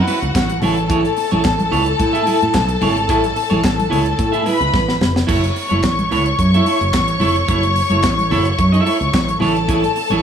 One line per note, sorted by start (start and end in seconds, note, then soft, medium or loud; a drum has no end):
0.00 0.58 F#4 medium
0.00 0.58 F#5 loud
0.07 0.18 C#4 medium
0.07 0.18 E4 medium
0.07 0.19 B4 medium
0.07 open hi-hat medium
0.07 high conga soft
0.22 0.32 C#2 medium
0.22 muted clean electric guitar stroke soft
0.22 closed hi-hat soft
0.35 0.55 A1 medium
0.35 muted clean electric guitar stroke soft
0.35 kick loud
0.35 snare loud
0.35 clap medium
0.35 closed hi-hat medium
0.35 high conga medium
0.49 muted clean electric guitar stroke soft
0.49 closed hi-hat soft
0.49 muted conga soft
0.62 1.03 A1 medium
0.62 0.76 E4 medium
0.62 0.77 G#4 medium
0.62 4.43 A4 medium
0.62 0.76 C#5 medium
0.62 4.43 A5 medium
0.62 open hi-hat medium
0.62 high conga medium
0.62 low conga medium
0.77 muted clean electric guitar stroke soft
0.77 closed hi-hat soft
0.90 1.04 E4 medium
0.90 1.04 G#4 medium
0.90 1.03 C#5 medium
0.90 kick loud
0.90 closed hi-hat medium
1.04 muted clean electric guitar stroke soft
1.04 closed hi-hat soft
1.17 muted clean electric guitar stroke soft
1.17 open hi-hat medium
1.31 1.41 A1 loud
1.31 1.42 E4 medium
1.31 1.42 G#4 medium
1.31 1.41 C#5 medium
1.31 closed hi-hat soft
1.31 high conga medium
1.45 1.65 A1 medium
1.45 kick loud
1.45 snare loud
1.45 clap medium
1.45 closed hi-hat medium
1.45 high conga medium
1.59 muted clean electric guitar stroke soft
1.59 closed hi-hat soft
1.59 muted conga soft
1.59 high conga medium
1.71 1.93 C#2 loud
1.71 1.86 E4 medium
1.71 1.86 G#4 medium
1.71 1.85 C#5 loud
1.71 open hi-hat medium
1.71 low conga medium
1.86 muted clean electric guitar stroke soft
1.86 closed hi-hat medium
1.99 2.20 A2 loud
1.99 muted clean electric guitar stroke soft
1.99 kick loud
1.99 closed hi-hat medium
1.99 muted conga soft
2.13 2.24 E4 medium
2.13 2.25 G#4 medium
2.13 2.25 E5 medium
2.13 closed hi-hat soft
2.25 2.37 E4 medium
2.25 2.38 G#4 medium
2.25 2.38 E5 medium
2.25 open hi-hat medium
2.25 high conga soft
2.42 2.52 A2 medium
2.42 closed hi-hat soft
2.54 2.75 B1 medium
2.54 muted clean electric guitar stroke soft
2.54 kick loud
2.54 snare loud
2.54 clap loud
2.54 closed hi-hat medium
2.54 high conga medium
2.68 muted clean electric guitar stroke soft
2.68 closed hi-hat soft
2.81 3.09 G#1 medium
2.81 2.96 E4 medium
2.81 2.96 G#4 medium
2.81 2.95 C#5 medium
2.81 open hi-hat medium
2.81 high conga medium
2.81 low conga medium
2.97 muted clean electric guitar stroke soft
2.97 closed hi-hat soft
3.09 3.30 A1 medium
3.09 3.23 E4 medium
3.09 3.23 G#4 medium
3.09 3.22 C#5 medium
3.09 kick loud
3.09 closed hi-hat medium
3.09 muted conga soft
3.23 muted clean electric guitar stroke soft
3.23 closed hi-hat soft
3.23 muted conga soft
3.36 muted clean electric guitar stroke soft
3.36 open hi-hat medium
3.50 3.61 A1 medium
3.50 3.61 E4 soft
3.50 3.61 G#4 medium
3.50 3.60 C#5 medium
3.50 closed hi-hat soft
3.50 high conga medium
3.64 3.85 A1 medium
3.64 kick loud
3.64 snare loud
3.64 clap medium
3.64 closed hi-hat medium
3.64 muted conga soft
3.64 high conga medium
3.76 muted clean electric guitar stroke soft
3.76 closed hi-hat soft
3.76 muted conga soft
3.76 high conga medium
3.90 4.12 C#2 medium
3.90 4.05 E4 medium
3.90 4.04 G#4 medium
3.90 4.03 C#5 medium
3.90 open hi-hat medium
3.90 low conga medium
4.04 muted clean electric guitar stroke soft
4.04 closed hi-hat medium
4.17 4.40 A2 loud
4.17 muted clean electric guitar stroke soft
4.17 kick loud
4.17 closed hi-hat medium
4.32 4.44 E4 medium
4.32 4.45 G#4 medium
4.32 4.45 E5 medium
4.32 closed hi-hat soft
4.46 4.57 E4 medium
4.46 4.57 G#4 medium
4.46 5.00 B4 medium
4.46 4.58 E5 medium
4.46 5.00 B5 medium
4.46 open hi-hat medium
4.46 high conga soft
4.60 4.70 C#2 medium
4.60 muted clean electric guitar stroke soft
4.60 closed hi-hat soft
4.72 4.94 A1 medium
4.72 muted clean electric guitar stroke soft
4.72 kick loud
4.72 snare medium
4.72 muted conga soft
4.72 high conga medium
4.87 muted clean electric guitar stroke soft
4.87 snare medium
5.01 5.22 F1 medium
5.01 snare loud
5.01 high conga medium
5.01 low conga medium
5.15 muted clean electric guitar stroke soft
5.15 snare medium
5.27 5.49 F#1 medium
5.27 5.42 E4 medium
5.27 5.43 A4 medium
5.27 5.42 C#5 medium
5.27 9.37 C#5 medium
5.27 9.37 C#6 medium
5.27 kick loud
5.27 crash medium
5.43 muted clean electric guitar stroke soft
5.43 closed hi-hat soft
5.56 muted clean electric guitar stroke soft
5.56 open hi-hat medium
5.69 5.81 F#1 medium
5.69 5.81 E4 soft
5.69 5.80 A4 soft
5.69 5.80 C#5 medium
5.69 closed hi-hat soft
5.69 high conga medium
5.84 6.04 A1 medium
5.84 kick loud
5.84 snare loud
5.84 clap medium
5.84 closed hi-hat medium
5.84 high conga medium
5.98 muted clean electric guitar stroke soft
5.98 closed hi-hat soft
5.98 muted conga soft
5.98 high conga medium
6.11 6.32 C#2 medium
6.11 6.25 E4 medium
6.11 6.26 A4 medium
6.11 6.25 C#5 loud
6.11 open hi-hat medium
6.11 low conga medium
6.26 muted clean electric guitar stroke soft
6.26 closed hi-hat medium
6.39 6.59 F#2 medium
6.39 muted clean electric guitar stroke soft
6.39 kick loud
6.39 closed hi-hat medium
6.39 muted conga soft
6.52 6.66 E4 medium
6.52 6.66 A4 medium
6.52 6.66 E5 medium
6.52 closed hi-hat soft
6.52 muted conga soft
6.65 6.78 E4 medium
6.65 6.78 A4 medium
6.65 6.78 E5 medium
6.65 open hi-hat medium
6.65 high conga soft
6.81 6.90 F#1 loud
6.81 muted clean electric guitar stroke soft
6.81 closed hi-hat soft
6.93 7.14 A1 medium
6.93 muted clean electric guitar stroke soft
6.93 kick loud
6.93 snare loud
6.93 clap loud
6.93 closed hi-hat medium
6.93 muted conga soft
6.93 high conga medium
7.08 muted clean electric guitar stroke soft
7.08 closed hi-hat medium
7.20 7.41 F1 medium
7.20 7.35 E4 medium
7.20 7.35 A4 medium
7.20 7.34 C#5 medium
7.20 open hi-hat medium
7.20 high conga medium
7.20 low conga medium
7.35 muted clean electric guitar stroke soft
7.35 closed hi-hat soft
7.48 7.80 F#1 loud
7.48 7.63 E4 medium
7.48 7.63 A4 medium
7.48 7.62 C#5 medium
7.48 kick loud
7.48 closed hi-hat medium
7.48 muted conga soft
7.63 muted clean electric guitar stroke soft
7.63 closed hi-hat soft
7.63 muted conga soft
7.76 muted clean electric guitar stroke soft
7.76 open hi-hat medium
7.90 8.00 F#1 medium
7.90 8.01 E4 medium
7.90 8.01 A4 medium
7.90 8.00 C#5 medium
7.90 closed hi-hat soft
7.90 high conga medium
8.04 8.32 A1 medium
8.04 kick loud
8.04 snare loud
8.04 clap medium
8.04 closed hi-hat medium
8.04 muted conga soft
8.04 high conga medium
8.19 muted clean electric guitar stroke soft
8.19 closed hi-hat soft
8.19 high conga medium
8.30 8.51 F#1 loud
8.30 8.45 E4 medium
8.30 8.45 A4 loud
8.30 8.45 C#5 medium
8.30 open hi-hat medium
8.30 low conga medium
8.45 muted clean electric guitar stroke soft
8.45 closed hi-hat medium
8.59 8.79 F#2 loud
8.59 muted clean electric guitar stroke soft
8.59 kick loud
8.59 closed hi-hat medium
8.72 8.84 E4 medium
8.72 8.85 A4 medium
8.72 8.85 E5 medium
8.72 closed hi-hat soft
8.86 8.97 E4 medium
8.86 8.97 A4 medium
8.86 8.97 E5 medium
8.86 open hi-hat medium
8.86 high conga soft
9.01 9.10 C#2 medium
9.01 closed hi-hat soft
9.13 9.34 A1 loud
9.13 muted clean electric guitar stroke soft
9.13 kick loud
9.13 snare loud
9.13 clap medium
9.13 closed hi-hat medium
9.13 muted conga soft
9.13 high conga medium
9.28 muted clean electric guitar stroke soft
9.28 closed hi-hat medium
9.28 muted conga soft
9.40 9.82 A1 medium
9.40 9.55 E4 medium
9.40 9.55 G#4 medium
9.40 10.22 A4 medium
9.40 9.54 C#5 medium
9.40 10.22 A5 loud
9.40 open hi-hat medium
9.40 high conga medium
9.40 low conga medium
9.55 muted clean electric guitar stroke soft
9.55 closed hi-hat soft
9.68 9.82 E4 medium
9.68 9.83 G#4 medium
9.68 9.82 C#5 medium
9.68 kick loud
9.68 closed hi-hat medium
9.83 muted clean electric guitar stroke medium
9.83 closed hi-hat soft
9.83 muted conga soft
9.96 muted clean electric guitar stroke soft
9.96 open hi-hat medium
10.10 10.20 A1 loud
10.10 10.21 E4 medium
10.10 10.21 G#4 medium
10.10 10.20 C#5 medium
10.10 closed hi-hat soft
10.10 high conga medium